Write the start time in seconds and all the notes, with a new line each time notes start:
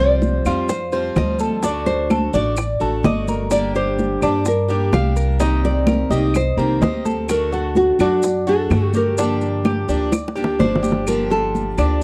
Already playing: C2 C3 F3 G3 C4 F4
0.00 C5 D5
0.22 high bongo, high conga, maracas
0.45 F2 F3 G3 C4 F4, high bongo, high conga, claves, maracas
0.69 C5, muted steel-string acoustic guitar stroke, high bongo, high conga, maracas
0.92 F3 G3 C4 F4 C5, high bongo, high conga, maracas
1.16 D2 F3 G3 C4 F4 D#5, high bongo, low bongo, high conga, claves, maracas
1.39 A4, high conga, maracas
1.63 D3 A3 D4 F#4 D5, high bongo, high conga, maracas
1.86 C5, high bongo, high conga, maracas
2.10 A4, high bongo, high conga, claves, maracas
2.33 A1 A3 D4 F#4 D5, high bongo, high conga, maracas
2.56 muted steel-string acoustic guitar stroke, high bongo, high conga, claves, maracas
2.80 A1 A3 D4 F#4 A4, high conga, maracas
3.03 G1 D3 A3 F#4 D5 D#5, high bongo, low bongo, high conga, maracas
3.28 A#4, high bongo, high conga, maracas
3.51 D3 G3 A#3 D4 G4 D5, high bongo, high conga, claves, maracas
3.75 G4 C5, high bongo, high conga, maracas
3.99 high bongo, high conga, maracas
4.22 G2 G3 A#3 D4 G4, high bongo, high conga, claves, maracas
4.45 A#4, muted steel-string acoustic guitar stroke, high bongo, high conga, maracas
4.68 G3 A#3 D4 G4, high bongo, high conga, maracas
4.92 C2 G3 A#3 D4 G4 F5, high bongo, low bongo, high conga, claves, maracas
5.16 A#4, maracas
5.39 C3 D#3 A#3 C4 D#4 G4 D#5, high bongo, high conga, maracas
5.64 D5, high bongo, high conga, maracas
5.87 A#4, high bongo, high conga, claves, maracas
6.10 C2 D#3 A#3 C4 G4 D#5, high bongo, high conga, maracas
6.34 C5, muted steel-string acoustic guitar stroke, high bongo, high conga, claves, maracas
6.57 C2 D#3 A#3 C4 G4 A#4, high conga, maracas
6.81 D2 A#3 C4 G4 C5 D#5, high bongo, low bongo, high conga, maracas
7.05 A4, high bongo, high conga, maracas
7.28 D3 A3 D4 F#4 A#4, high bongo, high conga, claves, maracas
7.52 F#4 A4, high bongo, high conga, maracas
7.75 F#4, high bongo, high conga, maracas
7.99 F#2 A3 D4 F#4, high bongo, high conga, claves, maracas
8.23 muted steel-string acoustic guitar stroke, high bongo, high conga, maracas
8.47 A3 D4 F#4 A4, high bongo, high conga, maracas
8.70 G2 D3 A3 D4 F#4, high bongo, low bongo, high conga, claves, maracas
8.93 G4 A#4, high conga, maracas
9.18 D3 F3 A#3 D4 G4, high bongo, high conga, maracas
9.41 high bongo, high conga, maracas
9.65 G4, high bongo, high conga, claves, maracas
9.88 D2 F3 A#3 D4 G4 D5, high bongo, high conga, maracas
10.12 muted steel-string acoustic guitar stroke, high bongo, claves, maracas
10.28 high bongo
10.36 F3 A#3 D4 G4, high conga, maracas
10.44 low bongo
10.59 G1 F3 A#3 D4 G4 C5 D5, low bongo, high conga, maracas
10.75 low bongo
10.83 G4, high conga, maracas
10.92 low bongo
11.07 D3 F3 A#3 D4 G4 A#4, high conga, claves, maracas
11.30 F4 A4, high conga, maracas
11.55 high conga, maracas
11.78 D2 F3 A#3 D4 G4, high conga, claves, maracas